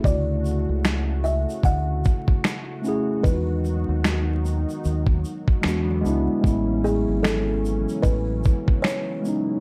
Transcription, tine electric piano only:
0.03 C#3 A3
0.07 E4 F#4
2.82 A3 C#4
2.86 E4 G#4
3.21 G#3 B3
3.26 D#4 F4
3.34 F#4
5.62 G#3 B3
5.66 D4 F#4
6.01 G#3 B3
6.06 D4 E4
6.41 G#3 B3
6.46 C#4 E4
9.22 G#3 B3
9.26 C#4 D#4

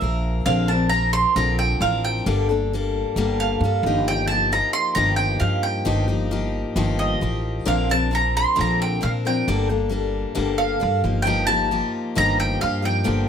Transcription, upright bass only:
0.02 A#1
0.46 A#1
1.36 A#1
1.80 A1
2.26 G1
3.16 G1
3.61 G2
3.83 G1
4.96 G1
5.41 G2
5.86 G1
6.76 G1
7.22 A1
7.67 A#1
8.59 A#1
9.04 A#2
9.48 G1
10.37 G1
10.83 G2
11.04 G1
12.17 G1
12.63 G2
13.07 G1

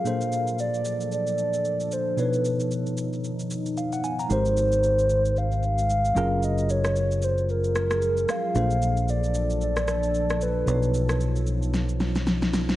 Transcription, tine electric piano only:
0.04 A#2 A#3 D4 A4 C5
2.17 B2 B3 D#4 B4 C#5
3.78 F5
3.93 F#5
4.04 G#5
4.19 A#5
4.29 G#3 D#4 G4 A#4 C5
6.15 F#3 C#4 F4 G#4 A#4
8.54 A#2 A#3 D4 A4 C5
10.66 B2 B3 D4 B4 C#5
10.74 D#4

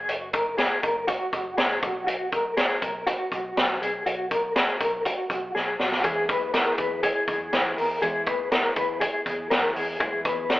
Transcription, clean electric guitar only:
0.08 F#4
0.33 A#4
0.58 G#4
0.82 A#4
1.07 F#4
1.58 G#4
1.82 F#4
2.07 F#4
2.32 A#4
2.57 G#4
2.82 A#4
3.07 F#4
3.81 G#4
4.06 F#4
4.31 A#4
4.56 G#4
4.81 A#4
5.05 F#4
5.55 G#4
5.80 F#4
6.04 G#4
6.29 B4
6.54 A#4
6.78 B4
7.03 G#4
7.77 A#4
8.02 G#4
8.27 B4
8.52 A#4
8.76 B4
9.00 G#4
9.50 A#4
9.75 G#4
10.00 G#4
10.25 B4
10.50 A#4

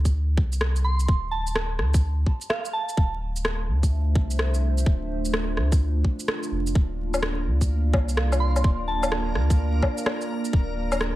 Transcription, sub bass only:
Already playing: D2
0.38 C2
1.08 D1
1.79 D2
2.97 D1
3.68 D2
4.15 C2
4.86 D1
5.57 D2
6.52 F1
6.75 D1
7.46 D2
7.93 C2
8.64 D1
9.35 D2
10.53 D1

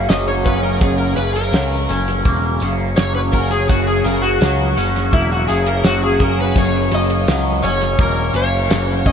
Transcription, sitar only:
0.09 D#5
0.28 C#5
0.44 B4
0.63 A#4
0.82 G#4
0.98 A#4
1.16 B4
1.33 A#4
2.96 C#5
3.15 B4
3.32 A#4
3.51 G#4
3.69 F#4
3.87 G#4
4.04 A#4
4.22 F#4
5.13 E4
5.32 F#4
5.47 G#4
5.67 A#4
5.86 F#4
6.03 G#4
6.22 A#4
6.40 B4
6.58 C#5
6.94 D#5
7.63 C#5
8.01 A#4
8.36 C#5
9.06 D#5

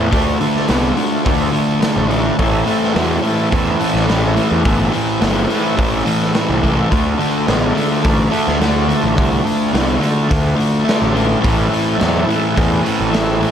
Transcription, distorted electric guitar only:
0.11 D3 A3
0.41 D3 A3
0.68 D3 B3
0.96 D3 A3
1.25 D3 A3
1.52 D3 A3
1.80 D3 A3
2.09 D3 A3
2.39 A2 E3
2.66 A2 E3
2.95 A2 F#3
3.22 A2 E3
3.51 A2 E3
3.80 A2 E3
4.08 A2 E3
4.36 A2 E3
4.65 A2 E3
4.91 A2 E3
5.21 A2 F#3
5.48 A2 E3
5.76 A2 E3
6.05 A2 E3
6.34 A2 E3
6.62 A2 E3
6.90 D3 A3
7.18 D3 A3
7.47 D3 B3
7.75 D3 A3
8.02 D3 A3
8.31 D3 A3
8.61 D3 A3
8.88 D3 A3
9.16 D3 A3
9.44 D3 A3
9.73 D3 B3
10.00 D3 A3
10.29 D3 A3
10.55 D3 A3
10.85 D3 A3
11.13 D3 A3
11.41 A2 E3
11.69 A2 E3
11.97 A2 F#3
12.27 A2 E3
12.55 A2 E3
12.83 A2 E3
13.10 A2 E3
13.40 A2 E3

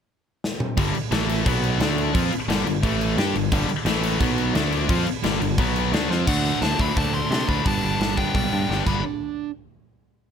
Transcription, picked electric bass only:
0.77 G1
0.95 muted picked electric bass stroke
1.11 A1
1.46 B1
1.80 D2
2.15 F2
2.48 G1
2.66 G1
2.83 A1
3.17 G2
3.34 G1
3.52 G1
3.85 A1
4.20 B1
4.54 D2
4.90 F2
5.25 G1
5.41 G1
5.58 B1
5.92 D2
6.10 F2
6.28 D2
6.62 D2
6.79 D2
6.97 D2
7.31 C3
7.49 D2
7.66 G1
7.83 G1
7.99 G1
8.34 B1
8.53 G2
8.69 G1
8.86 G1

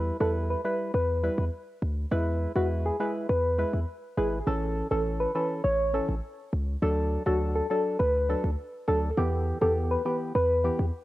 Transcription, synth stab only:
Already playing: G3 E4 B4
0.20 G3 E4 B4
0.64 G3 E4 B4
1.23 G3 E4 B4
2.11 G#3 E4 B4
2.56 G#3 E4 B4
3.00 G#3 E4 B4
3.58 G#3 E4 B4
4.17 G#3 E4 B4
4.47 E3 C#4 A4
4.91 E3 C#4 A4
5.35 E3 C#4 A4
5.94 E3 C#4 A4
6.82 F#3 D4 A4
7.26 F#3 D4 A4
7.70 F#3 D4 A4
8.29 F#3 D4 A4
8.88 F#3 D4 A4
9.17 E3 B3 G4
9.61 E3 B3 G4
10.05 E3 B3 G4
10.64 E3 B3 G4

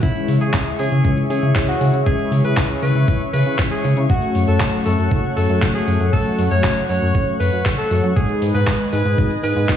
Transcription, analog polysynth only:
0.03 E3
1.30 E3 G#3 C#4 E4
1.56 E3 G#3 C#4 E4
2.07 E3 G#3 C#4 E4
3.34 E3 G#3 C#4 E4
3.59 E3 G#3 C#4 E4
4.10 A3
5.37 F#3 A3 C#4 F#4
5.62 F#3 A3 C#4 F#4
6.13 F#3 A3 C#4 F#4
7.79 F#3 A3 C#4 F#4
7.91 F#3 A3 C#4 F#4
8.16 G#3 B3 G#4
9.44 G#3 B3 D#4 G#4
9.69 G#3 B3 D#4 G#4

